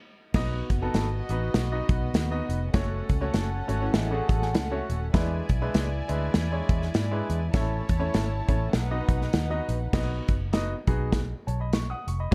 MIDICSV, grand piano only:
0, 0, Header, 1, 2, 480
1, 0, Start_track
1, 0, Tempo, 598802
1, 277, Time_signature, 4, 2, 24, 8
1, 9897, End_track
2, 0, Start_track
2, 0, Title_t, "Grand piano"
2, 0, Program_c, 0, 0
2, 282, Note_on_c, 0, 59, 82
2, 282, Note_on_c, 0, 63, 75
2, 285, Note_on_c, 0, 66, 75
2, 285, Note_on_c, 0, 75, 93
2, 520, Note_off_c, 0, 59, 0
2, 521, Note_off_c, 0, 63, 0
2, 522, Note_off_c, 0, 66, 0
2, 522, Note_off_c, 0, 75, 0
2, 656, Note_on_c, 0, 66, 70
2, 657, Note_on_c, 0, 59, 81
2, 658, Note_on_c, 0, 63, 67
2, 660, Note_on_c, 0, 69, 93
2, 857, Note_off_c, 0, 66, 0
2, 858, Note_off_c, 0, 59, 0
2, 858, Note_off_c, 0, 63, 0
2, 859, Note_off_c, 0, 69, 0
2, 1044, Note_on_c, 0, 59, 71
2, 1044, Note_on_c, 0, 63, 70
2, 1045, Note_on_c, 0, 66, 68
2, 1049, Note_on_c, 0, 71, 81
2, 1213, Note_off_c, 0, 59, 0
2, 1213, Note_off_c, 0, 63, 0
2, 1213, Note_off_c, 0, 66, 0
2, 1215, Note_off_c, 0, 71, 0
2, 1376, Note_on_c, 0, 59, 70
2, 1379, Note_on_c, 0, 63, 69
2, 1380, Note_on_c, 0, 75, 75
2, 1381, Note_on_c, 0, 66, 65
2, 1646, Note_off_c, 0, 59, 0
2, 1648, Note_off_c, 0, 63, 0
2, 1648, Note_off_c, 0, 75, 0
2, 1649, Note_off_c, 0, 66, 0
2, 1850, Note_on_c, 0, 59, 70
2, 1850, Note_on_c, 0, 63, 66
2, 1854, Note_on_c, 0, 66, 68
2, 1857, Note_on_c, 0, 75, 88
2, 2067, Note_off_c, 0, 59, 0
2, 2067, Note_off_c, 0, 63, 0
2, 2069, Note_off_c, 0, 66, 0
2, 2070, Note_off_c, 0, 75, 0
2, 2192, Note_on_c, 0, 57, 86
2, 2195, Note_on_c, 0, 61, 76
2, 2195, Note_on_c, 0, 66, 73
2, 2197, Note_on_c, 0, 73, 91
2, 2437, Note_off_c, 0, 57, 0
2, 2438, Note_off_c, 0, 61, 0
2, 2438, Note_off_c, 0, 66, 0
2, 2439, Note_off_c, 0, 73, 0
2, 2572, Note_on_c, 0, 61, 76
2, 2576, Note_on_c, 0, 57, 81
2, 2576, Note_on_c, 0, 66, 73
2, 2577, Note_on_c, 0, 73, 90
2, 2777, Note_off_c, 0, 61, 0
2, 2779, Note_off_c, 0, 57, 0
2, 2779, Note_off_c, 0, 66, 0
2, 2779, Note_off_c, 0, 73, 0
2, 2948, Note_on_c, 0, 57, 82
2, 2949, Note_on_c, 0, 61, 67
2, 2951, Note_on_c, 0, 66, 76
2, 2954, Note_on_c, 0, 73, 83
2, 3126, Note_off_c, 0, 57, 0
2, 3126, Note_off_c, 0, 61, 0
2, 3128, Note_off_c, 0, 66, 0
2, 3129, Note_off_c, 0, 73, 0
2, 3294, Note_on_c, 0, 61, 65
2, 3296, Note_on_c, 0, 57, 69
2, 3297, Note_on_c, 0, 66, 65
2, 3302, Note_on_c, 0, 68, 77
2, 3437, Note_on_c, 0, 81, 67
2, 3532, Note_off_c, 0, 81, 0
2, 3551, Note_on_c, 0, 80, 59
2, 3566, Note_off_c, 0, 61, 0
2, 3567, Note_off_c, 0, 57, 0
2, 3568, Note_off_c, 0, 66, 0
2, 3570, Note_off_c, 0, 68, 0
2, 3632, Note_on_c, 0, 78, 67
2, 3639, Note_off_c, 0, 80, 0
2, 3766, Note_off_c, 0, 78, 0
2, 3778, Note_on_c, 0, 57, 75
2, 3779, Note_on_c, 0, 76, 66
2, 3780, Note_on_c, 0, 61, 73
2, 3780, Note_on_c, 0, 66, 77
2, 3782, Note_on_c, 0, 73, 85
2, 3992, Note_off_c, 0, 57, 0
2, 3992, Note_off_c, 0, 61, 0
2, 3993, Note_off_c, 0, 66, 0
2, 3993, Note_off_c, 0, 73, 0
2, 4096, Note_off_c, 0, 76, 0
2, 4114, Note_on_c, 0, 62, 77
2, 4115, Note_on_c, 0, 56, 81
2, 4116, Note_on_c, 0, 64, 74
2, 4118, Note_on_c, 0, 71, 91
2, 4359, Note_off_c, 0, 56, 0
2, 4359, Note_off_c, 0, 62, 0
2, 4359, Note_off_c, 0, 64, 0
2, 4361, Note_off_c, 0, 71, 0
2, 4502, Note_on_c, 0, 56, 84
2, 4502, Note_on_c, 0, 62, 77
2, 4505, Note_on_c, 0, 64, 78
2, 4505, Note_on_c, 0, 71, 97
2, 4702, Note_off_c, 0, 56, 0
2, 4702, Note_off_c, 0, 62, 0
2, 4704, Note_off_c, 0, 64, 0
2, 4704, Note_off_c, 0, 71, 0
2, 4875, Note_on_c, 0, 62, 73
2, 4879, Note_on_c, 0, 56, 81
2, 4880, Note_on_c, 0, 64, 70
2, 4885, Note_on_c, 0, 71, 87
2, 5050, Note_off_c, 0, 62, 0
2, 5052, Note_off_c, 0, 56, 0
2, 5052, Note_off_c, 0, 64, 0
2, 5055, Note_off_c, 0, 71, 0
2, 5224, Note_on_c, 0, 56, 73
2, 5224, Note_on_c, 0, 62, 69
2, 5229, Note_on_c, 0, 64, 63
2, 5229, Note_on_c, 0, 73, 80
2, 5492, Note_off_c, 0, 56, 0
2, 5492, Note_off_c, 0, 62, 0
2, 5494, Note_off_c, 0, 64, 0
2, 5494, Note_off_c, 0, 73, 0
2, 5702, Note_on_c, 0, 56, 80
2, 5706, Note_on_c, 0, 62, 69
2, 5708, Note_on_c, 0, 64, 69
2, 5709, Note_on_c, 0, 71, 79
2, 5914, Note_off_c, 0, 56, 0
2, 5916, Note_off_c, 0, 62, 0
2, 5917, Note_off_c, 0, 64, 0
2, 5917, Note_off_c, 0, 71, 0
2, 6042, Note_on_c, 0, 57, 83
2, 6042, Note_on_c, 0, 64, 79
2, 6044, Note_on_c, 0, 61, 72
2, 6047, Note_on_c, 0, 73, 93
2, 6282, Note_off_c, 0, 57, 0
2, 6283, Note_off_c, 0, 64, 0
2, 6284, Note_off_c, 0, 61, 0
2, 6285, Note_off_c, 0, 73, 0
2, 6409, Note_on_c, 0, 57, 82
2, 6410, Note_on_c, 0, 61, 76
2, 6410, Note_on_c, 0, 64, 75
2, 6414, Note_on_c, 0, 73, 95
2, 6616, Note_off_c, 0, 57, 0
2, 6616, Note_off_c, 0, 61, 0
2, 6616, Note_off_c, 0, 64, 0
2, 6618, Note_off_c, 0, 73, 0
2, 6796, Note_on_c, 0, 57, 78
2, 6798, Note_on_c, 0, 64, 69
2, 6800, Note_on_c, 0, 61, 68
2, 6800, Note_on_c, 0, 73, 81
2, 6970, Note_off_c, 0, 57, 0
2, 6971, Note_off_c, 0, 64, 0
2, 6972, Note_off_c, 0, 61, 0
2, 6972, Note_off_c, 0, 73, 0
2, 7142, Note_on_c, 0, 59, 72
2, 7143, Note_on_c, 0, 75, 83
2, 7146, Note_on_c, 0, 63, 67
2, 7146, Note_on_c, 0, 66, 68
2, 7410, Note_off_c, 0, 59, 0
2, 7411, Note_off_c, 0, 75, 0
2, 7412, Note_off_c, 0, 63, 0
2, 7412, Note_off_c, 0, 66, 0
2, 7616, Note_on_c, 0, 66, 67
2, 7617, Note_on_c, 0, 59, 73
2, 7617, Note_on_c, 0, 63, 71
2, 7620, Note_on_c, 0, 75, 90
2, 7830, Note_off_c, 0, 66, 0
2, 7831, Note_off_c, 0, 59, 0
2, 7831, Note_off_c, 0, 63, 0
2, 7832, Note_off_c, 0, 75, 0
2, 7961, Note_on_c, 0, 59, 89
2, 7961, Note_on_c, 0, 63, 74
2, 7964, Note_on_c, 0, 66, 69
2, 7965, Note_on_c, 0, 75, 90
2, 8270, Note_off_c, 0, 59, 0
2, 8270, Note_off_c, 0, 63, 0
2, 8271, Note_off_c, 0, 66, 0
2, 8272, Note_off_c, 0, 75, 0
2, 8437, Note_on_c, 0, 63, 75
2, 8443, Note_on_c, 0, 66, 72
2, 8444, Note_on_c, 0, 59, 79
2, 8445, Note_on_c, 0, 75, 86
2, 8599, Note_off_c, 0, 63, 0
2, 8602, Note_off_c, 0, 59, 0
2, 8602, Note_off_c, 0, 66, 0
2, 8603, Note_off_c, 0, 75, 0
2, 8715, Note_on_c, 0, 59, 70
2, 8715, Note_on_c, 0, 63, 68
2, 8718, Note_on_c, 0, 66, 74
2, 8718, Note_on_c, 0, 68, 82
2, 8957, Note_off_c, 0, 59, 0
2, 8958, Note_off_c, 0, 63, 0
2, 8959, Note_off_c, 0, 66, 0
2, 8959, Note_off_c, 0, 68, 0
2, 9194, Note_on_c, 0, 81, 63
2, 9195, Note_on_c, 0, 73, 49
2, 9291, Note_off_c, 0, 81, 0
2, 9292, Note_off_c, 0, 73, 0
2, 9300, Note_on_c, 0, 83, 59
2, 9305, Note_on_c, 0, 75, 50
2, 9394, Note_off_c, 0, 83, 0
2, 9397, Note_off_c, 0, 75, 0
2, 9406, Note_on_c, 0, 85, 70
2, 9536, Note_off_c, 0, 85, 0
2, 9539, Note_on_c, 0, 87, 64
2, 9546, Note_on_c, 0, 78, 59
2, 9672, Note_off_c, 0, 87, 0
2, 9676, Note_off_c, 0, 78, 0
2, 9684, Note_on_c, 0, 85, 63
2, 9776, Note_off_c, 0, 85, 0
2, 9778, Note_on_c, 0, 83, 61
2, 9779, Note_on_c, 0, 75, 51
2, 9870, Note_on_c, 0, 61, 80
2, 9870, Note_on_c, 0, 66, 83
2, 9871, Note_on_c, 0, 57, 89
2, 9897, Note_off_c, 0, 57, 0
2, 9897, Note_off_c, 0, 61, 0
2, 9897, Note_off_c, 0, 66, 0
2, 9897, Note_off_c, 0, 75, 0
2, 9897, Note_off_c, 0, 83, 0
2, 9897, End_track
0, 0, End_of_file